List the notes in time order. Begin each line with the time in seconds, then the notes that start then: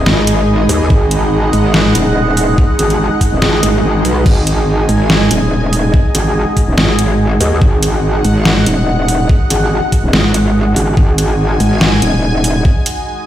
Already playing: G#3 D#4 G#4 D#5 G#5 B5
0.06 G#1, snare
0.27 closed hi-hat
0.69 D#2, open hi-hat
0.90 G#1 F#5, kick
1.11 closed hi-hat
1.53 G#1, open hi-hat
1.74 snare
1.95 D#1, closed hi-hat
2.37 open hi-hat
2.58 kick
2.79 G#1, closed hi-hat
2.90 closed hi-hat
3.21 kick, open hi-hat
3.32 D#1
3.42 G#1, snare, swell
3.63 G#1, closed hi-hat
3.84 G#1
4.05 B1, open hi-hat
4.26 G#1 G#5, kick, crash
4.47 closed hi-hat
4.89 G#1, open hi-hat
4.98 F#5
5.10 snare
5.31 D#1, closed hi-hat
5.73 open hi-hat
5.94 kick
6.15 G#1, closed hi-hat
6.57 kick, open hi-hat
6.68 D#1
6.78 G#1, snare
6.99 closed hi-hat
7.41 D#2, open hi-hat
7.62 G#1 F#5, kick
7.83 closed hi-hat
8.24 G#1, open hi-hat
8.45 snare
8.66 D#1, closed hi-hat
9.08 open hi-hat
9.29 kick
9.50 G#1, closed hi-hat
9.92 kick, open hi-hat
10.04 D#1
10.13 G#1, snare
10.34 closed hi-hat
10.76 G#1, open hi-hat
10.97 G#1 G#5, kick
11.18 closed hi-hat
11.60 G#1, open hi-hat
11.81 snare
12.02 D#1, closed hi-hat
12.44 open hi-hat
12.65 kick
12.86 closed hi-hat